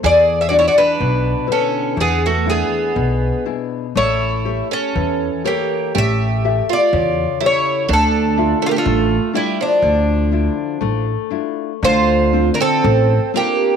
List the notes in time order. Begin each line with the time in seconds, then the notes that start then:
0.03 E2 E3 G#4 D5
0.41 G#4 E5
0.49 D4 E4 F#4 G#4 D5
0.59 E4 C#5
0.68 F#4 D5
0.78 D4 B4
1.00 B1 B2
1.47 D3 E4 B4
1.52 C#4 A4
1.97 E2 E3 B3
2.01 G#4
2.26 A3 F#4
2.45 D4 E4 G#4
2.50 B3 G#4
2.96 B1 B2
3.45 D4 E4 G#4
3.95 A1 A3 E4 C#5
4.45 G4 A4 C#5
4.71 C#4 A4
4.95 E2 E3
5.44 A#3 G4 A4 C#5
5.95 A1 A3 G4 E5
6.44 G4 A4 E5
6.69 F4 D5
6.93 E2 C#3
7.41 E4 G4 A4 C#5
7.46 C#5
7.89 D2 D3 D4
7.93 A4
8.37 D4 F4 E5
8.62 A3
8.66 A#3 F4
8.71 G4
8.76 A3 F4
8.86 A1 A3
9.33 G3 D4 E4 F4
9.61 F3 D4
9.82 D2 D3
10.31 D4 E4 F4
10.81 A1 A3
11.30 D4 E4 F4
11.82 D2 D3 F4 C5
12.33 C4 D4 F4
12.54 D4 A#4
12.61 C4 A4
12.84 A1 A4
13.34 A#3 C4 D4 F4 G4